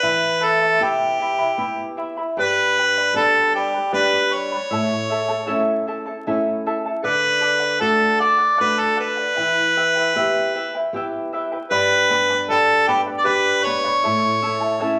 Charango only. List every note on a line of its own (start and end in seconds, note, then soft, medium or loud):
0.01 0.39 E4 medium
0.01 0.40 E5 medium
0.01 0.39 G5 soft
0.01 0.40 B5 medium
0.40 0.60 E4 medium
0.40 0.60 E5 medium
0.40 0.60 G5 soft
0.40 0.60 B5 medium
0.62 0.81 E4 soft
0.62 0.80 E5 soft
0.81 1.19 E4 medium
0.81 1.20 G4 medium
0.81 1.19 E5 medium
0.81 1.18 G5 medium
0.81 1.20 B5 medium
1.20 1.39 E4 soft
1.20 1.38 E5 medium
1.20 1.39 G5 soft
1.20 1.37 B5 medium
1.38 1.57 E4 soft
1.38 1.57 E5 soft
1.38 1.57 B5 soft
1.57 1.96 E4 medium
1.57 1.97 E5 medium
1.57 1.96 G5 medium
1.57 1.97 B5 medium
1.97 2.17 E4 medium
1.97 2.17 E5 medium
1.97 2.16 G5 medium
1.97 2.16 B5 medium
2.17 2.37 E4 soft
2.17 2.37 E5 soft
2.17 2.36 B5 soft
2.37 2.76 G4 medium
2.37 2.76 B4 medium
2.37 2.76 D5 medium
2.37 2.75 G5 medium
2.37 2.76 B5 medium
2.77 2.96 B4 medium
2.77 2.96 D5 medium
2.77 2.96 G5 soft
2.77 2.96 B5 medium
2.97 3.15 B4 soft
2.97 3.15 D5 soft
2.97 3.15 B5 soft
3.15 3.54 B4 soft
3.15 3.54 D5 medium
3.15 3.53 G5 soft
3.15 3.54 B5 medium
3.55 3.73 B4 medium
3.55 3.74 D5 medium
3.55 3.73 G5 soft
3.55 3.73 B5 medium
3.74 3.92 B4 soft
3.74 3.91 D5 soft
3.74 3.92 B5 soft
3.92 4.31 G4 medium
3.92 4.31 B4 medium
3.92 4.31 D5 medium
3.92 4.30 G5 medium
3.92 4.31 B5 medium
4.31 4.51 B4 soft
4.31 4.51 D5 medium
4.31 4.50 G5 soft
4.31 4.51 B5 medium
4.52 4.71 B4 soft
4.52 4.71 D5 soft
4.52 4.70 B5 soft
4.70 5.09 E4 medium
4.70 5.10 A4 medium
4.70 5.08 E5 medium
4.70 5.10 A5 medium
5.10 5.29 E4 medium
5.10 5.29 A4 medium
5.10 5.28 E5 medium
5.10 5.27 A5 medium
5.28 5.46 E4 soft
5.28 5.46 A4 soft
5.28 5.46 A5 medium
5.46 5.86 E4 medium
5.46 5.86 A4 medium
5.46 5.86 C#5 medium
5.46 5.86 E5 medium
5.46 5.86 A5 medium
5.87 6.06 E4 medium
5.87 6.06 A4 medium
5.87 6.06 E5 medium
5.87 6.05 A5 medium
6.06 6.26 E4 soft
6.06 6.26 A4 soft
6.06 6.25 A5 soft
6.27 6.65 E4 medium
6.27 6.65 A4 medium
6.27 6.65 E5 medium
6.27 6.65 A5 medium
6.66 6.85 E4 medium
6.66 6.85 A4 medium
6.66 6.85 E5 medium
6.66 6.84 A5 medium
6.85 7.05 E4 soft
6.85 7.01 A4 soft
6.85 7.03 A5 soft
7.02 7.40 A4 medium
7.02 7.41 D5 medium
7.02 7.41 F#5 medium
7.41 7.61 A4 medium
7.41 7.60 D5 medium
7.41 7.59 F#5 medium
7.60 7.79 D5 soft
7.60 7.80 F#5 soft
7.79 8.18 A4 medium
7.79 8.18 D5 medium
7.79 8.19 F#5 medium
8.19 8.39 A4 medium
8.19 8.38 D5 medium
8.19 8.37 F#5 medium
8.38 8.56 D5 soft
8.38 8.56 F#5 soft
8.57 8.94 A4 medium
8.57 8.95 D5 medium
8.57 8.96 F#5 medium
8.95 9.16 A4 soft
8.95 9.17 D5 medium
8.95 9.16 F#5 medium
9.17 9.36 D5 soft
9.17 9.37 F#5 soft
9.35 9.75 E4 medium
9.35 9.75 B4 medium
9.35 9.75 E5 medium
9.35 9.76 G5 medium
9.76 9.96 E4 medium
9.76 9.96 B4 medium
9.76 9.95 E5 medium
9.76 9.94 G5 medium
9.96 10.15 E4 soft
9.96 10.16 B4 soft
9.96 10.15 G5 medium
10.16 10.54 E4 medium
10.16 10.54 G4 medium
10.16 10.54 B4 medium
10.16 10.53 E5 medium
10.16 10.55 G5 medium
10.55 10.74 E4 medium
10.55 10.74 B4 medium
10.55 10.74 E5 medium
10.55 10.73 G5 medium
10.75 10.94 E4 soft
10.75 10.94 B4 soft
10.75 10.93 G5 soft
10.95 11.33 E4 medium
10.95 11.33 B4 medium
10.95 11.32 E5 medium
10.95 11.33 G5 medium
11.33 11.52 E4 medium
11.33 11.52 B4 medium
11.33 11.52 E5 medium
11.33 11.51 G5 medium
11.52 11.70 E4 soft
11.52 11.70 B4 soft
11.52 11.70 G5 soft
11.70 12.09 G4 medium
11.70 12.10 B4 medium
11.70 12.10 D5 medium
11.70 12.09 G5 medium
11.70 12.10 B5 medium
12.10 12.30 B4 medium
12.10 12.30 D5 medium
12.10 12.29 G5 medium
12.10 12.29 B5 medium
12.30 12.49 B4 soft
12.30 12.49 D5 soft
12.30 12.49 B5 medium
12.50 12.87 B4 medium
12.50 12.88 D5 medium
12.50 12.87 G5 medium
12.50 12.87 B5 medium
12.88 13.06 B4 medium
12.88 13.06 D5 medium
12.88 13.07 G5 medium
12.88 13.05 B5 medium
13.06 13.23 B4 soft
13.06 13.24 D5 soft
13.06 13.24 B5 soft
13.24 13.64 G4 medium
13.24 13.62 B4 medium
13.24 13.63 D5 medium
13.24 13.62 G5 medium
13.24 13.64 B5 medium
13.63 13.83 B4 medium
13.63 13.83 D5 medium
13.63 13.83 G5 medium
13.63 13.83 B5 medium
13.84 14.03 B4 soft
13.84 14.03 D5 soft
13.84 14.03 B5 medium
14.03 14.41 E4 medium
14.03 14.41 A4 medium
14.03 14.41 E5 medium
14.03 14.42 A5 medium
14.42 14.61 E4 medium
14.42 14.60 A4 medium
14.42 14.61 E5 medium
14.42 14.59 A5 medium
14.60 14.79 E4 soft
14.60 14.79 A4 soft
14.60 14.80 A5 medium
14.79 14.99 E4 medium
14.79 14.99 A4 medium
14.79 14.99 C#5 medium
14.79 14.99 E5 medium
14.79 14.99 A5 medium